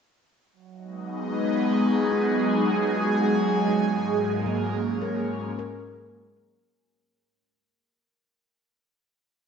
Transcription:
0.53 6.76 F#3 medium
0.74 4.90 D#4 medium
0.82 6.78 G#3 medium
0.82 3.65 B3 medium
1.11 6.78 G#4 medium
2.12 3.83 F4 soft
3.63 6.76 G#2 medium
3.69 5.66 D#4 soft
3.98 6.75 A#3 medium
4.46 6.44 F#3 medium
4.60 6.75 C#4 medium
5.02 5.57 A#4 soft
5.59 7.30 A#4 medium

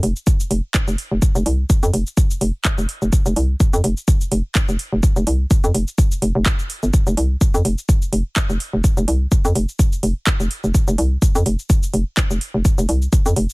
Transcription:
0.03 0.13 F1 medium
0.03 open hi-hat medium
0.16 cabasa soft
0.27 kick loud
0.27 cabasa medium
0.40 cabasa soft
0.51 0.61 F1 medium
0.51 open hi-hat medium
0.74 kick loud
0.74 clap loud
0.74 cabasa medium
0.88 0.96 F1 medium
0.88 cabasa soft
0.98 open hi-hat medium
1.11 1.20 F1 medium
1.22 kick loud
1.22 cabasa medium
1.35 1.43 F1 loud
1.35 cabasa soft
1.46 1.65 C2 medium
1.46 open hi-hat loud
1.70 kick loud
1.70 cabasa medium
1.83 1.91 F2 loud
1.83 cabasa soft
1.94 2.04 F1 medium
1.94 open hi-hat loud
2.07 cabasa soft
2.17 kick loud
2.17 cabasa medium
2.31 cabasa soft
2.41 2.51 F1 medium
2.41 open hi-hat medium
2.65 kick loud
2.65 clap loud
2.65 cabasa medium
2.78 2.86 F1 medium
2.78 cabasa soft
2.89 open hi-hat medium
3.02 3.10 F1 medium
3.02 cabasa soft
3.13 kick loud
3.13 cabasa medium
3.26 3.34 F1 loud
3.26 cabasa soft
3.36 3.55 C2 medium
3.36 open hi-hat loud
3.60 kick loud
3.60 cabasa medium
3.73 3.82 F2 loud
3.73 cabasa soft
3.84 3.94 F1 medium
3.84 open hi-hat loud
3.97 cabasa soft
4.08 kick loud
4.08 cabasa medium
4.21 cabasa soft
4.32 4.42 F1 medium
4.32 open hi-hat medium
4.55 kick loud
4.55 clap loud
4.55 cabasa medium
4.69 4.77 F1 medium
4.69 cabasa soft
4.79 open hi-hat loud
4.92 5.01 F1 medium
5.03 kick loud
5.03 cabasa medium
5.16 5.24 F1 loud
5.16 cabasa soft
5.27 5.46 C2 medium
5.27 open hi-hat loud
5.51 kick loud
5.51 cabasa medium
5.64 5.72 F2 loud
5.64 cabasa soft
5.75 5.85 F1 medium
5.75 open hi-hat loud
5.88 cabasa soft
5.98 kick loud
5.98 cabasa medium
6.12 cabasa soft
6.22 6.32 F1 medium
6.22 open hi-hat medium
6.35 6.43 F1 loud
6.46 kick loud
6.46 clap loud
6.46 cabasa medium
6.59 cabasa soft
6.70 open hi-hat loud
6.83 6.91 G1 medium
6.83 cabasa soft
6.94 kick loud
6.94 cabasa medium
7.07 7.15 F1 loud
7.07 cabasa soft
7.17 7.36 C2 medium
7.17 open hi-hat loud
7.41 kick loud
7.41 cabasa medium
7.54 7.63 F2 loud
7.54 cabasa soft
7.65 7.75 F1 medium
7.65 open hi-hat medium
7.78 cabasa soft
7.89 kick loud
7.89 cabasa medium
8.02 cabasa soft
8.13 8.23 F1 medium
8.13 open hi-hat medium
8.36 kick loud
8.36 clap loud
8.36 cabasa medium
8.50 8.58 F1 medium
8.50 cabasa soft
8.60 open hi-hat medium
8.73 8.82 F1 medium
8.84 kick loud
8.84 cabasa medium
8.97 9.05 F1 loud
8.97 cabasa soft
9.08 9.27 C2 medium
9.08 open hi-hat medium
9.32 kick loud
9.32 cabasa medium
9.45 9.53 F2 loud
9.45 cabasa soft
9.55 9.66 F1 medium
9.55 open hi-hat medium
9.69 cabasa soft
9.79 kick loud
9.79 cabasa medium
9.92 cabasa soft
10.03 10.13 F1 medium
10.03 open hi-hat medium
10.27 kick loud
10.27 clap loud
10.27 cabasa medium
10.40 10.48 F1 medium
10.40 cabasa soft
10.51 open hi-hat medium
10.64 10.72 F1 medium
10.64 cabasa soft
10.74 kick loud
10.74 cabasa medium
10.88 10.96 F1 loud
10.88 cabasa soft
10.98 11.17 C2 medium
10.98 open hi-hat medium
11.22 kick loud
11.22 cabasa medium
11.35 11.43 F2 loud
11.35 cabasa soft
11.46 11.56 F1 medium
11.46 open hi-hat medium
11.59 cabasa soft
11.70 kick loud
11.70 cabasa medium
11.83 cabasa soft
11.94 12.04 F1 medium
11.94 open hi-hat medium
12.17 kick loud
12.17 clap loud
12.17 cabasa medium
12.31 12.39 F1 medium
12.31 cabasa soft
12.41 open hi-hat medium
12.54 12.63 F1 medium
12.65 kick loud
12.65 cabasa medium
12.78 12.86 F1 loud
12.78 cabasa soft
12.89 13.08 C2 medium
12.89 open hi-hat medium
13.02 cabasa soft
13.13 kick loud
13.13 cabasa medium
13.26 13.34 F2 loud
13.26 cabasa soft
13.36 13.47 F1 medium
13.36 open hi-hat medium
13.50 cabasa soft

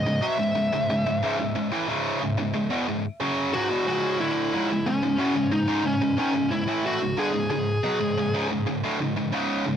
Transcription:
0.00 0.22 D#5 medium
0.06 0.22 C#2 medium
0.06 0.22 G#2 medium
0.22 0.38 B2 loud
0.22 0.38 F#3 loud
0.22 3.83 E5 medium
0.39 0.54 C#2 medium
0.39 0.54 G#2 medium
0.55 0.71 C#2 medium
0.55 0.72 G#2 medium
0.72 0.88 C#2 medium
0.72 0.89 G#2 medium
0.90 1.05 C#2 medium
0.90 1.05 G#2 medium
1.06 1.21 C#2 medium
1.06 1.22 G#2 medium
1.22 1.38 C#2 medium
1.22 1.38 G#2 loud
1.39 1.54 C#2 medium
1.39 1.54 G#2 medium
1.55 1.71 C#2 medium
1.55 1.72 G#2 medium
1.72 1.87 A2 medium
1.72 1.88 E3 loud
1.88 2.20 C#2 medium
1.88 2.21 G#2 loud
1.88 2.21 C#3 loud
2.22 2.36 C#2 medium
2.22 2.37 G#2 medium
2.38 2.53 C#2 medium
2.38 2.54 G#2 medium
2.54 2.70 C#2 medium
2.54 2.70 G#2 medium
2.70 2.86 E2 medium
2.70 2.87 B2 loud
2.88 3.04 C#2 medium
2.88 3.05 G#2 medium
3.20 3.53 F#2 medium
3.20 3.53 C#3 medium
3.20 3.53 F#3 loud
3.53 3.70 C#2 medium
3.53 3.70 G#2 medium
3.53 4.20 F#4 medium
3.70 3.86 E2 medium
3.70 3.86 B2 medium
3.87 4.19 C#2 medium
3.87 4.20 G#2 medium
3.87 4.20 C#3 loud
4.20 4.52 D2 medium
4.20 4.52 A2 medium
4.20 4.53 D3 medium
4.20 4.88 E4 medium
4.53 4.69 C#2 medium
4.53 4.69 G#2 loud
4.71 4.85 C#2 medium
4.71 4.85 G#2 medium
4.86 5.01 C#2 medium
4.86 5.01 G#2 medium
4.86 5.54 C#4 medium
5.02 5.18 C#2 medium
5.02 5.19 G#2 medium
5.18 5.34 E2 medium
5.18 5.35 B2 medium
5.35 5.50 C#2 medium
5.35 5.51 G#2 medium
5.52 5.66 C#2 medium
5.52 5.67 G#2 medium
5.52 5.86 D#4 medium
5.68 5.83 C#2 medium
5.68 5.83 G#2 loud
5.84 6.00 C#2 medium
5.84 6.00 G#2 medium
5.84 6.18 C#4 loud
6.01 6.17 C#2 medium
6.01 6.16 G#2 medium
6.18 6.34 G#2 medium
6.18 6.34 D#3 loud
6.18 6.50 C#4 medium
6.34 6.50 C#2 medium
6.34 6.51 G#2 medium
6.51 6.67 C#2 medium
6.51 6.68 G#2 medium
6.51 6.85 E4 loud
6.67 7.00 A2 loud
6.67 7.00 E3 loud
6.67 7.00 A3 loud
6.86 7.19 F#4 medium
7.01 7.17 C#2 medium
7.01 7.17 G#2 medium
7.17 7.33 G2 medium
7.17 7.33 D3 loud
7.17 7.49 G#4 loud
7.34 7.49 C#2 medium
7.34 7.49 G#2 medium
7.50 7.77 C#2 medium
7.50 7.77 G#2 medium
7.50 8.46 G#4 loud
7.83 7.99 B2 loud
7.83 8.00 F#3 medium
8.00 8.16 C#2 medium
8.00 8.17 G#2 medium
8.17 8.33 C#2 medium
8.17 8.33 G#2 medium
8.34 8.49 C#2 medium
8.34 8.49 G#2 medium
8.51 8.65 C#2 medium
8.51 8.66 G#2 medium
8.66 8.83 C#2 medium
8.66 8.83 G#2 medium
8.84 8.99 D2 medium
8.84 8.99 A2 loud
9.00 9.15 C#2 medium
9.00 9.16 G#2 medium
9.17 9.31 C#2 medium
9.17 9.32 G#2 medium
9.32 9.64 C#2 loud
9.32 9.64 G#2 loud
9.32 9.65 C#3 loud
9.66 9.77 C#2 medium
9.66 9.77 G#2 medium

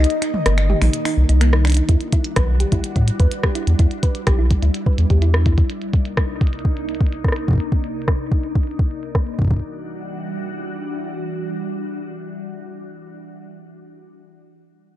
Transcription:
0.00 1.85 D#3 medium
0.00 1.85 A#3 medium
0.00 1.85 D#4 medium
0.00 1.37 D#5 loud
0.04 closed hi-hat medium
0.10 closed hi-hat soft
0.22 0.28 D#4 medium
0.22 finger snap medium
0.22 closed hi-hat medium
0.34 mid tom medium
0.46 0.74 G1 medium
0.46 0.57 A#4 medium
0.46 cross-stick loud
0.46 closed hi-hat medium
0.58 finger snap medium
0.58 closed hi-hat soft
0.70 0.81 G4 medium
0.70 mid tom medium
0.82 0.89 A#1 loud
0.82 0.93 D#4 medium
0.82 finger snap medium
0.82 mid tom medium
0.82 open hi-hat medium
0.93 closed hi-hat medium
1.05 1.12 D#4 medium
1.05 finger snap medium
1.05 open hi-hat medium
1.17 1.25 C2 medium
1.29 1.81 C2 loud
1.29 1.40 D#4 medium
1.29 closed hi-hat medium
1.41 1.52 A#3 loud
1.41 finger snap medium
1.41 closed hi-hat medium
1.53 1.64 D#4 medium
1.53 cross-stick loud
1.65 1.76 D4 medium
1.65 finger snap medium
1.65 closed hi-hat soft
1.67 closed hi-hat soft
1.70 closed hi-hat medium
1.72 closed hi-hat medium
1.74 closed hi-hat medium
1.77 1.83 D#4 medium
1.77 closed hi-hat medium
1.89 1.96 E2 loud
1.89 5.66 G3 medium
1.89 9.47 D4 medium
1.89 2.00 E4 medium
1.89 3.77 F#4 medium
1.89 kick loud
1.89 closed hi-hat medium
2.01 closed hi-hat soft
2.12 2.19 E4 medium
2.12 kick loud
2.12 closed hi-hat medium
2.24 closed hi-hat medium
2.36 2.65 B1 medium
2.36 2.48 B4 medium
2.36 kick loud
2.36 cross-stick loud
2.36 closed hi-hat medium
2.60 2.71 G4 medium
2.60 closed hi-hat medium
2.72 2.79 D2 medium
2.72 2.83 E4 medium
2.72 kick loud
2.72 closed hi-hat medium
2.84 closed hi-hat medium
2.96 3.11 A2 medium
2.96 3.02 E4 medium
2.96 kick loud
2.96 closed hi-hat soft
3.08 closed hi-hat medium
3.20 3.27 E2 loud
3.20 3.31 B4 medium
3.20 kick loud
3.20 closed hi-hat medium
3.32 closed hi-hat medium
3.43 3.55 G4 medium
3.43 kick loud
3.43 cross-stick loud
3.55 3.67 E4 medium
3.55 closed hi-hat medium
3.67 3.75 E2 medium
3.67 closed hi-hat medium
3.79 3.87 E2 loud
3.79 3.86 E4 medium
3.79 5.68 E4 medium
3.79 kick loud
3.79 closed hi-hat medium
3.91 closed hi-hat soft
4.03 4.14 B4 medium
4.03 kick loud
4.03 closed hi-hat medium
4.15 closed hi-hat medium
4.27 4.55 B1 medium
4.27 4.38 G4 medium
4.27 kick loud
4.27 cross-stick loud
4.27 closed hi-hat medium
4.39 4.50 E4 medium
4.51 kick loud
4.51 closed hi-hat medium
4.62 4.70 D2 loud
4.62 4.69 E4 medium
4.62 closed hi-hat medium
4.74 closed hi-hat medium
4.86 4.98 B4 medium
4.86 kick loud
4.98 5.06 E2 medium
4.98 closed hi-hat medium
5.10 5.62 E2 medium
5.10 5.21 G4 medium
5.10 kick loud
5.10 closed hi-hat medium
5.22 5.33 E4 medium
5.22 closed hi-hat medium
5.34 cross-stick loud
5.46 5.52 E4 medium
5.46 kick loud
5.46 closed hi-hat medium
5.58 kick loud
5.58 closed hi-hat medium
5.70 9.47 C2 medium
5.70 9.47 A#3 medium
5.70 9.47 D#4 medium
5.70 closed hi-hat medium
5.82 closed hi-hat soft
5.93 kick loud
5.93 closed hi-hat medium
6.05 closed hi-hat medium
6.17 kick loud
6.17 cross-stick loud
6.17 closed hi-hat medium
6.41 kick loud
6.41 closed hi-hat medium
6.47 closed hi-hat medium
6.53 closed hi-hat soft
6.59 closed hi-hat soft
6.65 kick loud
6.77 closed hi-hat soft
6.89 closed hi-hat medium
6.95 closed hi-hat medium
7.01 kick loud
7.01 closed hi-hat soft
7.07 closed hi-hat soft
7.12 closed hi-hat medium
7.24 kick loud
7.24 cross-stick medium
7.28 cross-stick medium
7.32 cross-stick medium
7.32 closed hi-hat medium
7.48 kick loud
7.48 closed hi-hat soft
7.51 kick medium
7.53 kick medium
7.55 kick medium
7.58 kick soft
7.58 closed hi-hat medium
7.72 kick loud
7.72 closed hi-hat soft
7.84 closed hi-hat medium
8.02 closed hi-hat soft
8.08 kick loud
8.08 cross-stick loud
8.08 closed hi-hat medium
8.32 kick loud
8.43 closed hi-hat soft
8.55 kick loud
8.55 closed hi-hat soft
8.63 closed hi-hat soft
8.67 closed hi-hat soft
8.71 closed hi-hat medium
8.79 kick loud
8.91 closed hi-hat soft
9.03 closed hi-hat medium
9.15 kick loud
9.15 cross-stick loud
9.27 closed hi-hat medium
9.39 kick medium
9.39 closed hi-hat soft
9.42 kick medium
9.45 kick medium
9.48 13.14 E3 medium
9.48 13.14 G3 medium
9.48 13.14 D4 medium
9.48 13.14 F#4 medium
9.48 kick soft
9.51 kick loud
9.54 kick soft
9.57 kick soft
9.60 kick soft

